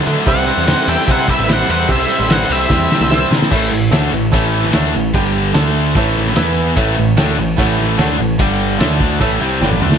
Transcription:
Already playing: D4 F#4 A4 D5
0.06 D3 F#3 A3 D4 E5, ride
0.26 C2 C3 G3 C4 E4 G4 C5 E5 F#5, kick, ride
0.46 C3 G3 C4 E4 G4 C5 E5, ride
0.57 E2
0.67 C3 G3 C4 E4 G4 C5 G5, snare, ride
0.87 E2 C3 G3 C4 E4 E5 G5, ride
1.06 C3 G3 C4 E4 G4 C5 E5, kick, ride
1.11 F#5
1.28 C3 G3 C4 E4 B4 E5, kick, ride
1.39 A1
1.48 C3 G3 C4 E4 G4 C5 E5, snare, ride
1.53 F#5
1.60 snare
1.68 E2 C3 G3 C4 E4 C5 F#5, ride
1.88 C2 C3 G3 C4 E4 G4 C5 E5, kick, ride
2.08 C3 G3 C4 E4 G4 C5 D5, ride
2.20 A1
2.28 C3 G3 C4 E4 G4 C5 F#5, snare, ride
2.32 C5 F#5
2.49 C2 C3 G3 C4 E4 C5 E5, ride
2.68 E2 C3 G3 C4 E4 G4 C5 E5, kick, snare
2.90 C3 G3 C4 E4, snare
3.01 C2, snare
3.10 C3 G3 C4 E4 G4 C5 E5, snare
3.30 C3 G3 C4 E4, snare
3.42 snare
3.50 A1 A2 E3 A3 E4 A4 C#5 E5, kick, crash
3.71 A1 A2 E3
3.90 D2 D3 A3 D4 E4 A4 C#5 E5, snare, ride bell
4.13 A1 A2 E3
4.31 A1 A2 E3 A3 E4 A4 C#5 E5, kick, ride bell
4.64 snare
4.72 D2 D3 A3 D4 E4 A4 C#5 E5, snare, ride bell
4.94 A1 A2 E3, snare
5.14 G1 G2 D3 G3 D4 G4 D5 G5, kick, ride bell
5.53 D2 D3 A3 D4 A4 D5 A5, snare, ride bell
5.95 A1 A2 E3 A3 E4 A4 C#5 E5, kick, ride bell
6.16 snare
6.27 snare
6.36 E2 E3 B3 E4 B4 E5, snare, ride bell
6.75 A1 A2 E3 A3 E4 A4 C#5 E5, kick, ride bell
6.98 A1 A2 E3
7.16 D2 D3 A3 D4 E4 A4 C#5 G5, snare, ride bell
7.36 A1 A2 E3
7.56 A1 A2 E3 A3 E4 A4 C#5 F#5, kick, ride bell
7.79 snare
7.97 D2 D3 A3 D4 E4 A4 C#5 F#5, snare, ride bell
8.18 A1 A2 E3
8.39 G1 G2 D3 G3 D4 G4 D5 G5, kick, ride bell
8.78 D2 D3 A3 D4 E4 A4 C#5 E5, snare, ride bell
8.99 D2 D3 A3 D4, kick
9.20 A1 A2 E3 A3 E4 A4 C#5 E5, kick, ride bell
9.40 C2 C3 G3 C4
9.61 G1 G2 D3 G3 E4 A4 C#5 G5, snare
9.72 mid tom
9.81 D2 D3 A3 D4, mid tom
9.92 snare

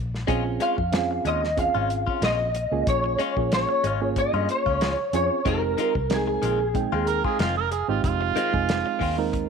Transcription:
Already playing: A#1
0.14 snare
0.27 A#1 G#3 C4 C#4 F4 G#4, kick, closed hi-hat
0.45 muted clean electric guitar stroke
0.60 G#3 C#4 F4 F5, closed hi-hat
0.78 F2, muted clean electric guitar stroke, kick
0.92 C4 C#4 F4 G#4, snare, closed hi-hat
1.11 muted clean electric guitar stroke
1.25 D#2 G#3 C#4 F4 D#5, closed hi-hat
1.43 muted clean electric guitar stroke, snare
1.57 C4 C#4 F4 G#4 F5, muted clean electric guitar stroke, kick, closed hi-hat
1.75 G#1 G#3 C#4 F4
1.90 muted clean electric guitar stroke, closed hi-hat
2.07 C#4 F4, muted fingered electric bass stroke, kick
2.22 A#1 G#3 C#4 F4 D#5, snare, closed hi-hat
2.40 muted clean electric guitar stroke
2.55 muted clean electric guitar stroke, closed hi-hat
2.72 C#2 A#3 C#4 F4 G#4
2.87 A#1 C#5, kick, closed hi-hat
3.04 muted clean electric guitar stroke
3.19 G#3 C#4 F4, closed hi-hat
3.36 A#1 A#3 C#4 F4 G#4, muted clean electric guitar stroke, kick
3.52 C#5, snare, closed hi-hat
3.69 muted clean electric guitar stroke
3.84 G#1 G#3 C#4 F4, closed hi-hat
4.01 A#3 C#4 F4 G#4, muted clean electric guitar stroke
4.16 D#5, muted clean electric guitar stroke, kick, closed hi-hat
4.33 G2 G#3 C#4 F4
4.49 C#5, muted clean electric guitar stroke, closed hi-hat
4.66 C#2 C#4 F4, kick
4.81 G#3 C#4 F4, snare, closed hi-hat
4.99 muted clean electric guitar stroke
5.13 F2 C4 C#4 F4 G#4 C#5, muted clean electric guitar stroke, closed hi-hat
5.45 F1 D#3 G#3 C4 D#4 F4 G4 A#4, kick, closed hi-hat
5.63 muted clean electric guitar stroke
5.78 D#3 G#3 C4 F4, closed hi-hat
5.95 C2, muted clean electric guitar stroke, kick
6.10 G#3 C4 D#4 G#4 A#4, snare, closed hi-hat
6.27 muted clean electric guitar stroke
6.42 A#1 D#3 G#3 C4 F4, closed hi-hat
6.60 muted clean electric guitar stroke
6.74 G#3 C4 D#4 G5, muted clean electric guitar stroke, kick, closed hi-hat
6.92 D#2 D#3 G#3 C4 F4
7.07 A#4, muted clean electric guitar stroke, closed hi-hat
7.24 G#3 C4 F4 G#4, kick
7.39 F1 D#3 G#3 C4 F4, snare, closed hi-hat
7.57 A#4, muted clean electric guitar stroke
7.71 G#4, muted clean electric guitar stroke, closed hi-hat
7.88 G#1 G#3 C4 D#4 F4 G4
8.04 F1 F4, kick, closed hi-hat
8.21 muted clean electric guitar stroke
8.36 D#3 G#3 C4 F4, closed hi-hat
8.53 F1 G#3 C4 D#4 G#4, muted clean electric guitar stroke, kick
8.69 snare, closed hi-hat
8.86 muted clean electric guitar stroke
8.99 D#2 D#3 G#3 C4 F4, kick, open hi-hat
9.17 G#3 C4 D#4 A#4, muted clean electric guitar stroke
9.32 muted clean electric guitar stroke, kick, closed hi-hat

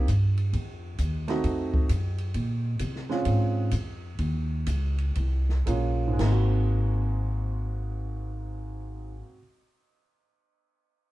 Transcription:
0.08 G2, kick, hi-hat pedal, ride
0.37 ride
0.53 F2, kick, ride
0.98 D#2, kick, hi-hat pedal, ride
1.28 A3 C4 D#4 F#4, snare, ride
1.44 F2, kick, ride
1.74 kick
1.89 F#2, kick, hi-hat pedal, ride
2.18 ride
2.34 A#2, kick, ride
2.79 C3, kick, hi-hat pedal, ride
2.95 snare
3.09 G#3 C4 C#4 F4, snare
3.25 G#2, kick, ride
3.71 F2, kick, hi-hat pedal, ride
4.18 D#2, kick, ride
4.66 C#2, kick, hi-hat pedal, ride
4.98 ride
5.15 C2, kick, ride
5.49 snare
5.66 A#1 G#3 A#3 C#4 F4, kick, hi-hat pedal, ride
6.08 G#2
6.13 G#3
6.19 G#1 A#3, snare, crash
6.26 C4
6.32 F#4

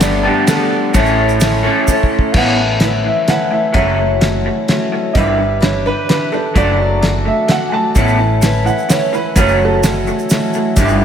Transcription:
Already playing: G1 G3 B3 D4 A4
0.00 A3 B3 G4 D5, snare, ride, shaker
0.23 G3 B3 D4 G4 A4
0.47 A3 B3 G4 A4 D5, snare, ride, shaker
0.93 A1 A2 A3 C#4 E4 A4 C#5, kick, ride, shaker
1.06 shaker
1.29 shaker
1.40 A3 C#4 E4 C#5, snare, ride, shaker
1.63 A2 A3 C#4 E4 A4
1.87 A3 C#4 E4 C#5, kick, shaker
2.03 kick
2.19 kick
2.32 A1 A2 E3 A3 B3 C#4 E4 F5, kick, crash
2.36 B4 F#5
2.58 E3
2.80 A2 E3 A3 E4, snare, closed hi-hat
2.84 C#4 B4
3.04 A2 E3 E5
3.28 A2 E3 A3 C#4 E4 B4 F#5, snare, closed hi-hat
3.51 A2 E3 E5
3.73 F#1 F#2 E3 F#3 A3 C#4 F#4 C#5 E5, kick, closed hi-hat
3.98 F#3 A3
4.21 E3 F#3 A3 C#4 F#4, snare, closed hi-hat
4.45 F#3 A3
4.68 E3 F#3 A3 C#4 F#4, snare, closed hi-hat
4.92 F#3 A3
5.13 G1 G2 D3 E3 G3 D4 G4 B4 D#5, kick, closed hi-hat
5.18 E5
5.39 G2 D3
5.61 G2 D3 E3 D4 G4 B4 C#5, snare, closed hi-hat
5.86 G2 D3 D4 G4 B4
6.09 G2 D3 E3 D4 G4 B4, snare, closed hi-hat
6.32 G2 D3 D4 G4 A4 B4
6.54 F#1 F#2 F#3 A3 D4 F#4 A4 D5, kick, closed hi-hat
6.78 F#3 A3
7.01 F#3 A3 D4 A4, snare, closed hi-hat
7.05 F#4
7.25 F#3 A3 E5
7.48 F#3 A3 D4 A4 F#5, snare, closed hi-hat
7.52 F#4
7.69 F#3 A3 G#5
7.74 A5
7.95 A1 A2 E3 A3 B3 C#4 E4 B4, kick, closed hi-hat, shaker
8.08 shaker
8.18 A2 E3
8.41 A2 E3 A3 C#4 E4 B4, snare, closed hi-hat, shaker
8.65 A2 E3 F#5, shaker
8.78 shaker
8.89 A2 E3 A3 C#4 E4 C#5, snare, closed hi-hat, shaker
8.93 B4
9.13 A2 E3 C#4 E4 B4, shaker
9.36 F#1 F#2 E3 F#3 A3 C#4 F#4, kick, closed hi-hat, shaker
9.40 C#5
9.48 shaker
9.60 F#3 A3
9.65 A4
9.83 E3 F#3 A3 C#4 F#4, snare, closed hi-hat, shaker
10.07 F#3 A3, shaker
10.19 shaker
10.30 E3 F#3 A3 C#4 F#4, snare, closed hi-hat, shaker
10.53 F#3 A3, shaker
10.76 G1 G2 D3 E3 G3 D4 G4 B4, kick, closed hi-hat, shaker
10.89 shaker
11.01 G2 D3

